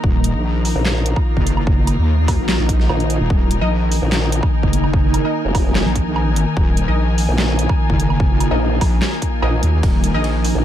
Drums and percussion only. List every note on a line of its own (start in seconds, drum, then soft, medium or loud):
0.04 kick loud
0.24 closed hi-hat medium
0.65 open hi-hat loud
0.85 snare loud
0.85 clap medium
1.06 closed hi-hat medium
1.16 kick loud
1.16 low woodblock medium
1.37 kick medium
1.47 closed hi-hat medium
1.57 low woodblock medium
1.67 kick loud
1.87 closed hi-hat medium
1.87 low woodblock medium
2.28 kick loud
2.28 open hi-hat medium
2.28 low woodblock medium
2.49 snare loud
2.49 clap loud
2.69 kick medium
2.69 closed hi-hat medium
2.80 snare soft
2.89 low woodblock medium
3.00 closed hi-hat soft
3.10 closed hi-hat medium
3.30 kick loud
3.51 closed hi-hat medium
3.92 open hi-hat medium
4.12 snare loud
4.12 clap loud
4.32 closed hi-hat medium
4.43 kick loud
4.43 low woodblock medium
4.63 kick medium
4.73 closed hi-hat medium
4.84 low woodblock medium
4.93 kick loud
5.14 closed hi-hat medium
5.14 low woodblock medium
5.55 kick loud
5.55 open hi-hat medium
5.55 low woodblock medium
5.75 snare loud
5.75 clap medium
5.96 kick medium
5.96 closed hi-hat medium
6.16 low woodblock medium
6.36 closed hi-hat medium
6.57 kick loud
6.77 closed hi-hat medium
7.18 open hi-hat medium
7.38 snare loud
7.38 clap medium
7.59 closed hi-hat medium
7.69 kick loud
7.69 low woodblock medium
7.90 kick medium
8.00 closed hi-hat medium
8.10 low woodblock medium
8.20 kick loud
8.40 closed hi-hat medium
8.40 low woodblock medium
8.81 kick loud
8.81 open hi-hat medium
8.81 low woodblock medium
9.02 snare loud
9.02 clap medium
9.22 kick medium
9.22 closed hi-hat medium
9.42 low woodblock medium
9.63 closed hi-hat medium
9.83 kick loud
9.83 ride medium
10.04 closed hi-hat medium
10.24 ride medium
10.45 open hi-hat loud